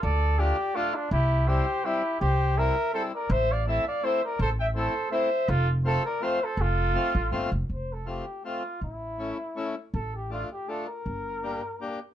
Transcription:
X:1
M:3/4
L:1/8
Q:"Swing" 1/4=164
K:F
V:1 name="Trumpet"
d2 d2 A F | G2 c2 G2 | c2 e2 c d | e f a f e d |
c g c2 e2 | A z c d f c | A4- A z | z6 |
z6 | z6 | z6 |]
V:2 name="Flugelhorn"
A2 G2 F D | E2 G2 E2 | G2 B2 A B | c d e d c B |
A e A2 c2 | F z A B c A | F4- F z | c A G2 F2 |
E4- E z | A G F G A B- | B4- B z |]
V:3 name="Accordion"
z2 [A,DF] z [A,DF] z | z2 [G,CE] z [G,CE] z | z2 [G,CE] z [G,CE] z | z2 [A,CE] z [A,CE] z |
z2 [A,CE] z [A,CE] z | z2 [A,CF] z [A,CF] z | z2 [A,CF] z [A,CF] z | z2 [A,CF] z [A,CF] z |
z2 [A,^CE] z [A,CE] z | z2 [A,DF] z [A,DF] z | z2 [B,DG] z [B,DG] z |]
V:4 name="Upright bass" clef=bass
D,,4 z2 | C,,4 z2 | C,,4 z2 | A,,,4 z2 |
A,,,4 z2 | F,,,4 z2 | F,,,3 A,,, G,,, F,,, | F,,,4 z2 |
A,,,4 z2 | A,,,4 z2 | G,,,4 z2 |]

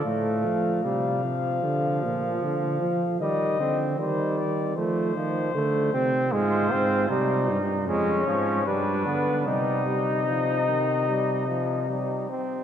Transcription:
X:1
M:4/4
L:1/8
Q:1/4=76
K:Fdor
V:1 name="Trumpet"
f8 | e2 c d c4 | [K:Cm] c3 z _d2 =B2 | e6- e z |]
V:2 name="Flugelhorn"
z8 | z8 | [K:Cm] F2 E2 _D2 =D2 | E6- E z |]
V:3 name="Trombone" clef=bass
=A,2 G, F,4- F, | G, C G,2 =A, F, A, C | [K:Cm] A, C G, z A, F, G, =B, | G, G, F, E, G, F, G, C |]
V:4 name="Bass trombone" clef=bass
=A,, F, C,2 D, B,, D, F, | E, D, E,2 F, E, D, C, | [K:Cm] A,, A,, C, G,, F,, A,, G,, D, | C,6- C, z |]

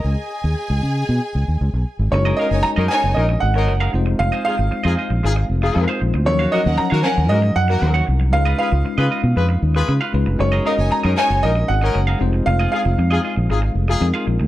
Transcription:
X:1
M:4/4
L:1/16
Q:1/4=116
K:Gblyd
V:1 name="Grand piano"
e12 z4 | d2 e2 b2 a2 e2 g4 z2 | f2 f8 z6 | d2 e2 b2 a2 e2 g4 z2 |
f2 f8 z6 | d2 e2 b2 a2 e2 g4 z2 | f2 f8 z6 |]
V:2 name="Violin section"
[Aa]16 | z3 [Eda] z2 [Eda]2 z8 | z16 | z3 [DBg] z2 [DBg]2 z8 |
z16 | z3 [Eda] z2 [Eda]2 z8 | z16 |]
V:3 name="Clean electric guitar"
z16 | z [ABe] [ABf] z2 [ABe] [ABe] z6 [ABf] z2 | z [Ace] [Acf] z2 [Ace] [Ace] z6 [Acf] z2 | z [Gdf] [Gdg] z2 [Gdf] [Gdf] z6 [Gdg] z2 |
z [F_ce] [Fcf] z2 [Fce] [Fce] z6 [Fcf] z2 | z [ABe] [ABf] z2 [ABe] [ABe] z6 [ABf] z2 | z [FAe] [FAf] z2 [FAe] [FAe] z6 [FAf] z2 |]
V:4 name="Horn section"
z16 | z2 [DEB] z2 [DEB] z2 [DEB] z2 [DEB]2 z3 | z2 [EFA] z2 [EFA] z2 [EFA] z2 [EFA]2 z3 | z2 [B,GB] z2 [B,GB] z2 [B,GB] z2 [B,GB]2 z3 |
z2 [FA_c] z2 [FAc] z2 [FAc] z2 [FAc]2 z3 | z2 [DEB] z2 [DEB] z2 [DEB] z2 [DEB]2 z3 | z2 [EFA] z2 [EFA] z2 [EFA] z2 [EFA]2 z3 |]
V:5 name="Tine electric piano"
z16 | [A,DEGB]12- [A,DEGB]2 [A,CEFc]2- | [A,CEFc]12 [A,CEFc]4 | [F,G,DEB]16 |
[A,DEF_c]12- [A,DEFc]2 [A,DEFc]2 | [A,DEGB]12- [A,DEGB]2 [A,CEFc]2- | [A,CEFc]12 [A,CEFB]4 |]
V:6 name="Fingered electric bass" clef=bass
D,, z2 E,, z D,, D,2 _C, z D,, E,, D,, _C,, z A,,, | G,,,2 z G,,, z G,, z G,,, B,,,2 A,,,2 G,,,2 F,,,2 | F,,, z2 A,,, z F,, z B,,, A,,,2 F,,,2 F,, z B,,, =D,, | E,,2 z E,, z E, z E,, A,,2 G,,2 E,,2 C,,2 |
D,,2 z D,, z D, z _C, F,,2 E,,2 D, z D,, F,,, | G,,,2 z G,,, z G,, z G,,, B,,,2 A,,,2 G,,,2 F,,,2 | F,,,2 z F,,, F,,2 z B,,, A,,,2 F,,,2 F,, z B,,, =D,, |]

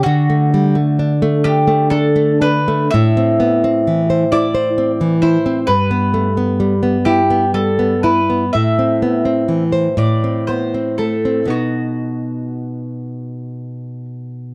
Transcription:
X:1
M:6/8
L:1/16
Q:3/8=42
K:Dmix
V:1 name="Mandolin"
F6 G2 A2 B2 | [K:Ador] e6 d4 c2 | B6 G2 A2 B2 | e6 d2 c2 A2 |
F8- F2 z2 |]
V:2 name="Nylon-string guitar"
D, A, G, A, D A, D A, D A, D A, | [K:Ador] A,, C B, C E, c E c C E, E C | G,, B, A, B, G, B, E B, G, B, E B, | A,, C B, C E, c A,, C B, C A, C |
[B,,B,^D]12 |]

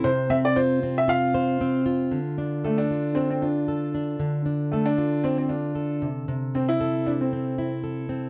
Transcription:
X:1
M:4/4
L:1/16
Q:"Swing 16ths" 1/4=115
K:Dm
V:1 name="Steel-string acoustic guitar"
C,2 C2 F2 C2 F2 c2 C2 F2 | D,2 D2 A2 F2 D2 F2 A2 D2 | D,2 D2 A2 F2 D2 F2 A2 C,2 | C,2 C2 A2 E2 C2 E2 A2 C2 |]
V:2 name="Upright piano"
c2 e d c3 e f6 z2 | z4 A, D3 C C D4 z2 | z4 A, D3 C C D4 z2 | z2 C E3 D C4 z4 z |]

